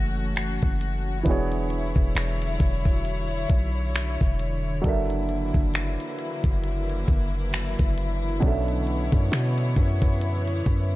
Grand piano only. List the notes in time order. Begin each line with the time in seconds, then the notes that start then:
Already playing: F#3 C#4 G#4 A4 E5
1.23 E3 B3 D4
1.28 F#4 G#4 C#5
4.82 F#3 D4 A4
4.87 A#4 E5
8.40 B2 F#3 C#4
8.44 D4 A4 E5